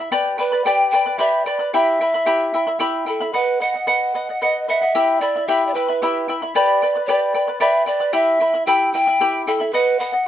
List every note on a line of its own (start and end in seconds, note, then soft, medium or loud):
0.00 0.11 E4 soft
0.00 0.12 E5 medium
0.00 0.11 B5 medium
0.12 0.38 G4 medium
0.12 0.38 B4 medium
0.12 0.38 D5 loud
0.12 0.37 G5 medium
0.12 0.39 B5 medium
0.38 0.52 B4 medium
0.38 0.66 B4 medium
0.38 0.51 D5 medium
0.38 0.52 G5 medium
0.38 0.51 B5 medium
0.52 0.65 B4 soft
0.52 0.65 D5 soft
0.52 0.65 B5 medium
0.64 0.92 G4 medium
0.64 0.92 B4 medium
0.64 0.93 D5 medium
0.64 0.90 G5 medium
0.64 0.92 G5 medium
0.64 0.93 B5 medium
0.91 1.06 B4 medium
0.91 1.05 D5 medium
0.91 1.20 G5 medium
0.91 1.06 G5 medium
0.91 1.05 B5 medium
1.06 1.18 B4 soft
1.06 1.18 D5 soft
1.06 1.18 B5 soft
1.18 1.46 G4 medium
1.18 1.45 B4 medium
1.18 1.46 D5 medium
1.18 1.47 E5 medium
1.18 1.45 G5 medium
1.18 1.46 B5 medium
1.45 1.59 B4 medium
1.45 1.72 D5 medium
1.45 1.58 D5 medium
1.45 1.59 G5 medium
1.45 1.58 B5 medium
1.59 1.73 B4 soft
1.59 1.73 D5 soft
1.59 1.73 B5 medium
1.73 2.00 E4 medium
1.73 2.00 G4 medium
1.73 2.77 E5 medium
1.73 2.00 E5 medium
1.73 2.00 G5 medium
1.73 2.00 B5 medium
2.01 2.14 E4 medium
2.01 2.14 E5 medium
2.01 2.14 G5 soft
2.01 2.13 B5 medium
2.14 2.25 E4 soft
2.14 2.26 E5 soft
2.14 2.26 B5 medium
2.26 2.53 E4 medium
2.26 2.53 G4 medium
2.26 2.53 E5 medium
2.26 2.53 G5 medium
2.26 2.54 B5 medium
2.54 2.67 E4 medium
2.54 2.66 E5 medium
2.54 2.67 G5 medium
2.54 2.66 B5 medium
2.67 2.79 E4 soft
2.67 2.79 E5 medium
2.67 2.79 B5 medium
2.79 3.06 E4 medium
2.79 3.06 G4 medium
2.79 3.06 E5 medium
2.79 3.05 G5 medium
2.79 3.07 B5 medium
3.06 3.20 E4 medium
3.06 3.32 A4 medium
3.06 3.20 E5 medium
3.06 3.20 G5 medium
3.06 3.19 B5 medium
3.20 3.33 E4 soft
3.20 3.34 E5 medium
3.20 3.34 B5 medium
3.33 3.63 B4 medium
3.33 3.59 B4 medium
3.33 3.60 D#5 medium
3.33 3.61 F#5 medium
3.60 3.74 B4 soft
3.60 3.74 D#5 medium
3.60 3.87 F#5 medium
3.60 3.73 F#5 medium
3.74 3.86 D#5 soft
3.74 3.86 F#5 soft
3.87 4.13 B4 medium
3.87 4.14 D#5 medium
3.87 4.37 F#5 medium
3.87 4.14 F#5 medium
4.14 4.28 B4 medium
4.14 4.28 D#5 medium
4.14 4.28 F#5 medium
4.29 4.41 D#5 soft
4.29 4.41 F#5 soft
4.41 4.67 B4 medium
4.41 4.70 D#5 medium
4.41 4.68 D#5 medium
4.41 4.68 F#5 medium
4.68 4.81 B4 medium
4.68 4.82 D#5 medium
4.68 5.22 E5 medium
4.68 4.80 F#5 medium
4.82 4.94 D#5 soft
4.82 4.94 F#5 medium
4.95 5.21 E4 medium
4.95 5.21 G4 medium
4.95 5.21 E5 medium
4.95 5.20 G5 medium
4.95 5.21 B5 medium
5.21 5.35 E4 medium
5.21 5.49 D5 medium
5.21 5.35 E5 medium
5.21 5.34 G5 medium
5.21 5.35 B5 medium
5.36 5.48 E4 soft
5.36 5.48 E5 soft
5.36 5.48 B5 soft
5.47 5.74 E4 medium
5.47 5.75 G4 medium
5.47 5.67 E5 medium
5.47 5.75 E5 medium
5.47 5.74 G5 medium
5.47 5.75 B5 medium
5.67 5.75 D5 medium
5.74 5.88 E4 medium
5.74 6.34 B4 medium
5.74 5.88 E5 medium
5.74 5.88 G5 medium
5.74 5.87 B5 medium
5.88 6.02 E4 soft
5.88 6.02 E5 soft
5.88 6.01 B5 medium
6.02 6.28 E4 medium
6.02 6.28 G4 medium
6.02 6.28 E5 medium
6.02 6.27 G5 medium
6.02 6.29 B5 medium
6.28 6.42 E4 medium
6.28 6.42 E5 medium
6.28 6.41 G5 medium
6.28 6.41 B5 medium
6.42 6.55 E4 soft
6.42 6.55 E5 soft
6.42 6.55 B5 medium
6.55 6.81 G4 medium
6.55 6.82 B4 medium
6.55 7.04 D5 loud
6.55 6.82 D5 medium
6.55 6.81 G5 medium
6.55 6.82 B5 medium
6.82 6.95 B4 medium
6.82 6.95 D5 medium
6.82 6.95 G5 medium
6.82 6.94 B5 medium
6.95 7.08 B4 soft
6.95 7.08 D5 soft
6.95 7.08 B5 soft
7.06 7.34 G4 medium
7.06 7.34 B4 medium
7.06 7.56 D5 medium
7.06 7.34 D5 medium
7.06 7.33 G5 medium
7.06 7.34 B5 medium
7.34 7.48 B4 medium
7.34 7.47 D5 medium
7.34 7.48 G5 medium
7.34 7.46 B5 medium
7.47 7.59 B4 soft
7.47 7.60 D5 soft
7.47 7.60 B5 medium
7.60 7.87 G4 medium
7.60 7.86 B4 medium
7.60 7.86 D5 medium
7.60 7.85 E5 medium
7.60 7.85 G5 medium
7.60 7.86 B5 medium
7.86 8.00 B4 medium
7.86 8.12 D5 medium
7.86 7.99 D5 medium
7.86 8.00 G5 soft
7.86 7.99 B5 medium
8.00 8.13 B4 soft
8.00 8.13 D5 medium
8.00 8.12 B5 medium
8.13 8.39 E4 medium
8.13 8.40 G4 medium
8.13 8.40 E5 medium
8.13 8.63 E5 loud
8.13 8.39 G5 medium
8.13 8.40 B5 medium
8.40 8.54 E4 medium
8.40 8.53 E5 medium
8.40 8.54 G5 soft
8.40 8.52 B5 medium
8.54 8.66 E4 soft
8.54 8.67 E5 soft
8.54 8.67 B5 soft
8.67 8.93 E4 medium
8.67 8.94 G4 medium
8.67 8.94 E5 medium
8.67 8.92 G5 medium
8.67 8.93 G5 medium
8.67 8.94 B5 medium
8.93 9.07 E4 medium
8.93 9.07 E5 medium
8.93 9.43 G5 loud
8.93 9.07 G5 medium
8.93 9.06 B5 medium
9.07 9.20 E4 soft
9.07 9.20 E5 soft
9.07 9.20 B5 medium
9.21 9.46 E4 medium
9.21 9.47 G4 medium
9.21 9.47 E5 medium
9.21 9.46 G5 medium
9.21 9.47 B5 medium
9.47 9.60 E4 medium
9.47 9.72 A4 medium
9.47 9.59 E5 medium
9.47 9.60 G5 medium
9.47 9.59 B5 medium
9.60 9.73 E4 soft
9.60 9.74 E5 soft
9.60 9.73 B5 soft
9.73 9.99 B4 medium
9.73 10.01 B4 medium
9.73 10.00 D#5 medium
9.73 10.00 F#5 medium
9.99 10.13 B4 medium
9.99 10.12 D#5 medium
9.99 10.26 F#5 medium
9.99 10.11 F#5 medium
10.12 10.26 D#5 soft
10.12 10.26 F#5 medium